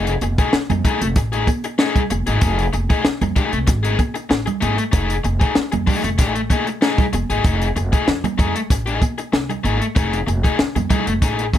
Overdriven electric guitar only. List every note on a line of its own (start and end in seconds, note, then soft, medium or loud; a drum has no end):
0.00 0.11 A3 medium
0.00 0.12 D#4 medium
0.00 0.12 G#4 loud
0.22 muted overdriven electric guitar stroke soft
0.39 0.52 A3 medium
0.39 0.53 D#4 medium
0.39 0.53 G#4 medium
0.53 muted overdriven electric guitar stroke soft
0.70 muted overdriven electric guitar stroke soft
0.85 1.06 A3 medium
0.85 1.02 D#4 medium
0.85 1.01 G#4 medium
1.02 muted overdriven electric guitar stroke soft
1.17 muted overdriven electric guitar stroke soft
1.32 1.46 A3 medium
1.32 1.47 D#4 medium
1.32 1.47 G#4 medium
1.47 muted overdriven electric guitar stroke soft
1.64 muted overdriven electric guitar stroke medium
1.78 2.00 A3 medium
1.78 2.00 D#4 loud
1.78 2.01 G#4 loud
2.10 muted overdriven electric guitar stroke soft
2.27 2.40 A3 medium
2.27 2.41 D#4 medium
2.27 2.42 G#4 medium
2.41 2.62 A3 loud
2.41 2.63 D#4 loud
2.41 2.64 G#4 loud
2.73 muted overdriven electric guitar stroke soft
2.90 3.03 A3 soft
2.90 3.04 D#4 medium
2.90 3.05 G#4 medium
3.04 muted overdriven electric guitar stroke soft
3.22 muted overdriven electric guitar stroke medium
3.36 3.57 A3 medium
3.36 3.53 D#4 medium
3.36 3.51 G#4 loud
3.52 muted overdriven electric guitar stroke soft
3.67 muted overdriven electric guitar stroke medium
3.83 3.97 A3 medium
3.83 3.98 D#4 medium
3.83 3.98 G#4 loud
3.98 muted overdriven electric guitar stroke soft
4.14 muted overdriven electric guitar stroke soft
4.29 muted overdriven electric guitar stroke soft
4.46 muted overdriven electric guitar stroke medium
4.61 4.82 A3 medium
4.61 4.78 D#4 medium
4.61 4.76 G#4 medium
4.77 muted overdriven electric guitar stroke medium
4.92 5.14 A3 medium
4.92 5.14 D#4 loud
4.92 5.15 G#4 loud
5.24 muted overdriven electric guitar stroke soft
5.40 5.54 A3 soft
5.40 5.55 D#4 medium
5.40 5.55 G#4 medium
5.55 muted overdriven electric guitar stroke soft
5.72 muted overdriven electric guitar stroke medium
5.87 6.08 A3 medium
5.87 6.04 D#4 medium
5.87 6.02 G#4 loud
6.04 muted overdriven electric guitar stroke medium
6.18 6.40 A3 loud
6.18 6.36 D#4 medium
6.18 6.34 G#4 loud
6.35 muted overdriven electric guitar stroke soft
6.50 6.67 A3 medium
6.50 6.67 D#4 medium
6.50 6.66 G#4 medium
6.67 muted overdriven electric guitar stroke soft
6.81 7.03 A3 medium
6.81 7.03 D#4 loud
6.81 7.04 G#4 loud
7.13 muted overdriven electric guitar stroke soft
7.30 7.43 A3 soft
7.30 7.44 D#4 soft
7.30 7.45 G#4 medium
7.44 7.66 A3 medium
7.44 7.66 D#4 loud
7.44 7.67 G#4 medium
7.76 muted overdriven electric guitar stroke soft
7.92 8.07 A3 medium
7.92 8.07 D#4 medium
7.92 8.07 G#4 medium
8.08 muted overdriven electric guitar stroke soft
8.24 muted overdriven electric guitar stroke soft
8.38 8.59 A3 medium
8.38 8.56 D#4 medium
8.38 8.54 G#4 loud
8.55 muted overdriven electric guitar stroke soft
8.71 muted overdriven electric guitar stroke soft
8.86 9.00 A3 medium
8.86 9.01 D#4 medium
8.86 9.01 G#4 medium
9.01 muted overdriven electric guitar stroke soft
9.18 muted overdriven electric guitar stroke soft
9.33 muted overdriven electric guitar stroke soft
9.50 muted overdriven electric guitar stroke soft
9.64 9.85 A3 medium
9.64 9.81 D#4 medium
9.64 9.79 G#4 medium
9.81 muted overdriven electric guitar stroke medium
9.95 10.17 A3 loud
9.95 10.17 D#4 loud
9.95 10.18 G#4 loud
10.27 muted overdriven electric guitar stroke soft
10.43 10.57 A3 medium
10.43 10.58 D#4 medium
10.43 10.59 G#4 medium
10.59 muted overdriven electric guitar stroke soft
10.76 muted overdriven electric guitar stroke soft
10.90 11.11 A3 medium
10.90 11.08 D#4 loud
10.90 11.06 G#4 medium
11.07 muted overdriven electric guitar stroke medium
11.22 11.43 A3 medium
11.22 11.44 D#4 medium
11.22 11.44 G#4 loud
11.54 muted overdriven electric guitar stroke soft